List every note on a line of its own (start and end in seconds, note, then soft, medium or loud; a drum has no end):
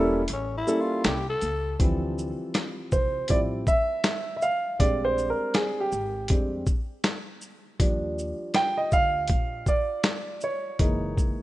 0.00 0.24 E1 medium
0.00 0.20 G3 medium
0.00 0.21 A#3 medium
0.00 0.21 C#4 medium
0.00 0.21 E4 medium
0.00 0.21 A4 medium
0.28 0.62 A1 loud
0.28 closed hi-hat loud
0.33 0.55 C#4 medium
0.57 0.82 E4 medium
0.67 1.14 G3 medium
0.67 1.14 A#3 medium
0.67 1.14 C#4 medium
0.67 1.14 E4 medium
0.67 1.14 A4 medium
0.67 shaker medium
0.81 1.07 F4 medium
1.04 1.37 C2 medium
1.04 1.29 G4 medium
1.04 snare loud
1.04 closed hi-hat medium
1.29 1.76 A4 medium
1.41 1.74 C#2 medium
1.41 closed hi-hat soft
1.41 shaker soft
1.79 2.31 D2 loud
1.79 4.76 E3 medium
1.79 3.27 F3 medium
1.79 3.28 G3 soft
1.79 3.28 C4 soft
1.79 kick loud
1.79 closed hi-hat medium
2.18 shaker soft
2.54 snare loud
2.54 closed hi-hat medium
2.92 3.24 C2 medium
2.92 3.31 C5 medium
2.92 kick medium
2.92 shaker soft
3.28 3.62 A1 medium
3.28 3.63 F3 soft
3.28 3.63 G3 soft
3.28 3.63 C4 soft
3.28 3.64 E4 soft
3.28 3.39 D5 medium
3.28 kick medium
3.28 closed hi-hat loud
3.67 4.35 E5 loud
3.67 kick medium
3.67 shaker medium
4.04 snare loud
4.04 closed hi-hat medium
4.36 4.42 E5 medium
4.42 4.77 F5 medium
4.42 shaker soft
4.79 5.31 A#1 loud
4.79 5.88 G3 medium
4.79 5.88 G#3 soft
4.79 5.88 C4 soft
4.79 5.89 D4 medium
4.79 5.03 D5 medium
4.79 kick loud
4.79 closed hi-hat medium
5.05 5.28 C5 medium
5.18 shaker soft
5.30 5.53 A#4 medium
5.54 5.81 G#4 medium
5.54 snare loud
5.54 closed hi-hat medium
5.80 6.51 G4 medium
5.92 6.32 G#1 medium
5.92 shaker soft
6.28 6.62 F2 medium
6.28 6.64 G3 soft
6.28 6.64 G#3 soft
6.28 6.64 C4 soft
6.28 6.64 D4 soft
6.28 kick medium
6.28 closed hi-hat loud
6.66 kick medium
6.66 shaker medium
7.04 snare loud
7.04 closed hi-hat medium
7.41 shaker soft
7.79 8.31 D#2 medium
7.79 10.76 F3 medium
7.79 10.76 G3 soft
7.79 10.76 D4 medium
7.79 kick loud
7.79 closed hi-hat medium
8.19 shaker soft
8.54 8.79 G5 loud
8.54 snare loud
8.54 closed hi-hat medium
8.77 8.93 D#5 medium
8.92 9.31 D2 medium
8.92 9.70 F5 loud
8.92 kick medium
8.92 shaker medium
9.28 9.61 A#1 medium
9.28 kick medium
9.28 closed hi-hat loud
9.66 10.39 D5 medium
9.66 kick medium
9.66 shaker medium
10.03 snare loud
10.03 closed hi-hat medium
10.41 11.42 C#5 medium
10.41 shaker soft
10.79 11.31 F#1 medium
10.79 11.42 E3 soft
10.79 11.42 G#3 soft
10.79 11.42 A#3 soft
10.79 11.42 D#4 medium
10.79 kick loud
10.79 closed hi-hat medium
11.17 kick medium
11.17 shaker soft